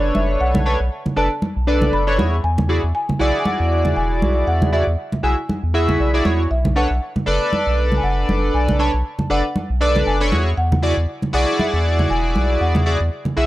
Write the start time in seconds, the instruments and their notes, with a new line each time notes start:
Already playing: analog synth bass F#1, analog polysynth D4 A4 B4 C#5, marimba D5
0.15 analog synth bass F#1, marimba E5, high conga
0.41 analog synth bass B1, marimba F#5
0.55 high conga, low conga
0.65 analog polysynth D4 A4 B4 C#5
0.80 analog synth bass B1
1.06 high conga, low conga
1.16 analog synth bass F#1, analog polysynth D4 A4 B4 D5, marimba A5
1.42 high conga
1.56 analog synth bass B1
1.67 analog polysynth D4 A4 B4 D5
1.81 high conga, low conga
1.93 analog synth bass F#1, marimba B5
2.07 analog polysynth D4 A4 B4 C#5
2.18 analog synth bass E2, analog polysynth E4 F#4 G#4 C#5, high conga
2.44 analog synth bass E2, marimba G#5
2.58 high conga, low conga
2.69 analog polysynth E4 F#4 G#4 D5
2.84 analog synth bass E2
2.95 marimba G#5
3.09 high conga, low conga
3.19 analog synth bass B1, analog polysynth E4 F#4 G#4 D5
3.40 marimba G#5
3.45 marimba F#5, high conga
3.60 analog synth bass E2
3.85 high conga, low conga
3.96 analog synth bass E1, marimba G#5
4.22 analog synth bass B1, high conga
4.47 analog synth bass E2, marimba F#5
4.62 high conga, low conga
4.72 analog polysynth E4 F#4 G#4 D5, marimba E5
4.87 analog synth bass E2
5.12 high conga, low conga
5.23 analog synth bass B1, analog polysynth E4 F#4 G#4 E5, marimba G#5
5.49 high conga
5.63 analog synth bass E2
5.74 analog polysynth E4 F#4 G#4 E5
5.89 high conga, low conga
6.00 analog synth bass B1, marimba D5
6.14 analog polysynth E4 F#4 G#4 D5
6.25 analog synth bass E2, analog polysynth E4 F#4 G#4 C#5, high conga
6.51 analog synth bass B1, marimba E5
6.65 high conga, low conga
6.76 analog polysynth D4 A4 B4 C#5, marimba F#5
6.90 analog synth bass B1
7.16 high conga, low conga
7.26 analog synth bass F#1, analog polysynth D4 A4 B4 D5, marimba D5
7.53 high conga
7.67 analog synth bass B1
7.92 high conga, low conga
7.97 marimba G#5
8.03 analog synth bass F#1, marimba F#5
8.29 analog synth bass F#1, high conga
8.54 analog synth bass B1, marimba G#5
8.68 high conga, low conga
8.79 analog polysynth D4 A4 B4 C#5, marimba A5
8.94 analog synth bass B1
9.19 high conga, low conga
9.30 analog synth bass F#1, analog polysynth D4 A4 B4 D5, marimba F#5
9.56 high conga
9.70 analog synth bass B1
9.81 analog polysynth D4 A4 B4 D5
9.96 high conga, low conga
10.07 analog synth bass F#1, marimba G#5
10.20 analog polysynth D4 A4 B4 C#5
10.32 analog synth bass E2, analog polysynth E4 F#4 G#4 C#5, high conga
10.57 analog synth bass E2, marimba F#5
10.72 high conga, low conga
10.82 analog polysynth E4 F#4 G#4 D5
10.97 analog synth bass E2
11.22 high conga, low conga
11.33 analog synth bass B1, analog polysynth E4 F#4 G#4 D5, marimba F#5
11.59 marimba E5, high conga
11.73 analog synth bass E2
11.99 high conga, low conga
12.10 analog synth bass E1, marimba G#5
12.35 analog synth bass B1, high conga
12.61 analog synth bass E2, marimba F#5
12.75 high conga, low conga
12.86 analog polysynth E4 F#4 G#4 D5
13.01 analog synth bass E2
13.25 high conga, low conga
13.37 analog synth bass B1, analog polysynth E4 F#4 G#4 E5, marimba E5